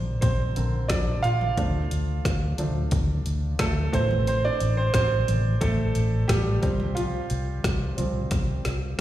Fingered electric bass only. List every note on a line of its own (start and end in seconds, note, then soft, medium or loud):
0.00 0.17 A#1 medium
0.23 0.50 A#1 medium
0.57 0.84 A#1 loud
0.90 1.18 A#1 medium
1.24 1.51 A#1 medium
1.58 1.85 D2 loud
1.92 2.19 D2 medium
2.25 2.53 D2 loud
2.59 2.86 D2 medium
2.92 3.20 D2 medium
3.26 3.54 D2 medium
3.59 3.87 D2 medium
3.93 4.49 A1 medium
4.61 4.89 A1 medium
4.95 5.22 A1 loud
5.29 5.56 A1 medium
5.61 5.89 A1 medium
5.96 6.24 A1 medium
6.30 6.57 A1 loud
6.63 7.19 C2 medium
7.31 7.59 C2 medium
7.64 7.92 C2 loud
7.98 8.26 C2 medium
8.31 8.59 C2 loud
8.66 8.94 C2 medium